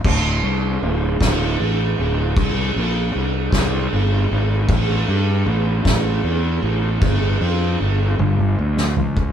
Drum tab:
CC |x-----------|------------|------------|------------|
RD |--x-x-x-x-x-|x-x-x-x-x-x-|x-x-x-x-x-x-|x-x-x-------|
SD |------o-----|------o-----|------o-----|---------o--|
T1 |------------|------------|------------|------oo----|
FT |------------|------------|------------|----------o-|
BD |o-----o-----|o-----o-----|o-----o-----|o----------o|